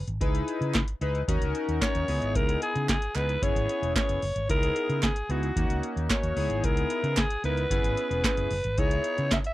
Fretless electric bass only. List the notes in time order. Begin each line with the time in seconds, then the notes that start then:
0.08 G#1
0.21 C#2
0.61 C#3
1.01 C#2
1.28 D#2
1.42 C#2
1.68 D#2
1.95 D#2
2.08 C#2
2.22 G#1
2.35 C#2
2.76 C#3
3.15 C#2
3.42 F#1
3.56 G#1
3.82 E1
4.09 F#1
4.23 F#1
4.36 G#1
4.49 C#2
4.89 C#3
5.29 C#2
5.56 D#2
5.70 C#2
5.96 D#2
6.23 D#2
6.37 C#2
6.50 G#1
6.63 C#2
7.03 C#3
7.44 C#2
7.70 F#1
7.84 G#1
8.11 E1
8.38 F#1
8.51 F#1
8.65 G#1
8.78 C#2
9.19 C#3